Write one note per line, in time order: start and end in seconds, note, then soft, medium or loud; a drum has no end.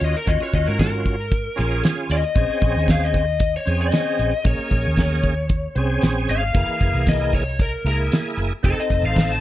0.00 0.13 D#2 medium
0.00 0.16 C#4 medium
0.00 0.16 F4 medium
0.00 0.16 F#4 medium
0.00 closed hi-hat medium
0.04 0.16 D#5 medium
0.17 0.28 A#4 medium
0.26 0.39 D#2 loud
0.26 1.16 C#4 medium
0.26 1.16 F4 medium
0.26 1.16 F#4 medium
0.26 0.41 D#5 medium
0.26 kick loud
0.26 closed hi-hat medium
0.41 0.54 C#5 medium
0.41 muted fingered electric bass stroke soft
0.53 0.66 D#2 medium
0.53 0.68 D#5 medium
0.53 kick medium
0.53 closed hi-hat medium
0.67 1.48 G#2 medium
0.67 0.79 A#4 medium
0.79 1.81 A#4 medium
0.79 kick medium
0.79 snare loud
0.79 closed hi-hat medium
1.06 kick medium
1.06 closed hi-hat medium
1.32 kick loud
1.32 closed hi-hat medium
1.56 1.82 A#1 loud
1.56 2.24 C#4 medium
1.56 2.24 F4 medium
1.56 2.25 G#4 medium
1.56 snare soft
1.56 closed hi-hat medium
1.84 snare loud
1.84 closed hi-hat medium
2.10 2.22 D#2 medium
2.10 2.87 D#5 medium
2.10 closed hi-hat medium
2.35 2.48 A#1 medium
2.35 3.25 C4 medium
2.35 3.25 C#4 medium
2.35 3.26 G#4 medium
2.35 kick loud
2.35 closed hi-hat medium
2.50 muted fingered electric bass stroke soft
2.62 2.75 A#1 medium
2.62 kick medium
2.62 closed hi-hat medium
2.76 3.57 D#2 medium
2.88 3.03 F5 medium
2.88 kick medium
2.88 snare loud
2.88 closed hi-hat medium
3.04 3.54 D#5 medium
3.14 kick medium
3.14 closed hi-hat medium
3.40 kick loud
3.40 closed hi-hat medium
3.57 3.81 C#5 medium
3.65 3.90 F2 medium
3.65 4.33 C4 medium
3.65 4.34 C#4 medium
3.65 4.34 G#4 medium
3.65 closed hi-hat medium
3.82 4.44 D#5 medium
3.92 snare loud
3.92 closed hi-hat medium
4.19 4.31 A#1 medium
4.19 closed hi-hat medium
4.44 4.58 A#1 medium
4.44 5.34 A#3 medium
4.44 5.34 C#4 medium
4.44 5.35 G#4 medium
4.44 5.99 C#5 loud
4.44 kick loud
4.44 closed hi-hat medium
4.59 muted fingered electric bass stroke soft
4.71 4.84 A#1 medium
4.71 kick medium
4.71 closed hi-hat medium
4.87 5.66 D#2 medium
4.97 kick medium
4.97 snare loud
4.97 closed hi-hat medium
5.13 snare soft
5.23 kick medium
5.23 closed hi-hat medium
5.49 kick loud
5.49 closed hi-hat medium
5.75 6.00 C2 medium
5.75 6.43 C4 medium
5.75 6.43 C#4 medium
5.75 6.44 G#4 loud
5.75 closed hi-hat medium
6.02 6.26 A#1 medium
6.02 snare loud
6.02 closed hi-hat medium
6.29 6.52 G#1 medium
6.29 7.06 F5 medium
6.29 closed hi-hat medium
6.53 6.67 F#1 loud
6.53 7.44 E3 medium
6.53 7.43 A#3 medium
6.53 7.44 G#4 medium
6.53 kick loud
6.53 closed hi-hat medium
6.68 muted fingered electric bass stroke soft
6.81 6.93 F#1 medium
6.81 kick medium
6.81 closed hi-hat medium
6.93 7.74 C2 medium
7.07 7.33 D#5 medium
7.07 kick medium
7.07 snare loud
7.07 closed hi-hat medium
7.33 7.60 C#5 medium
7.33 kick medium
7.33 closed hi-hat medium
7.59 7.86 A#4 medium
7.59 kick loud
7.59 closed hi-hat medium
7.85 8.08 C#2 medium
7.85 8.53 A#3 medium
7.85 8.53 E4 medium
7.85 8.53 G#4 medium
7.85 8.12 A#4 loud
7.85 closed hi-hat medium
8.12 snare loud
8.12 closed hi-hat medium
8.37 8.50 F#1 medium
8.37 closed hi-hat medium
8.63 8.76 F1 loud
8.63 9.40 C4 medium
8.63 9.40 D#4 medium
8.63 9.40 A4 medium
8.63 8.78 A4 medium
8.63 kick loud
8.63 closed hi-hat medium
8.78 9.04 D#5 medium
8.78 muted fingered electric bass stroke soft
8.90 9.02 F1 medium
8.90 kick medium
8.90 closed hi-hat medium
9.03 9.40 A1 medium
9.03 9.30 F5 medium
9.16 kick medium
9.16 snare loud
9.16 closed hi-hat medium
9.32 9.40 A5 medium
9.32 snare soft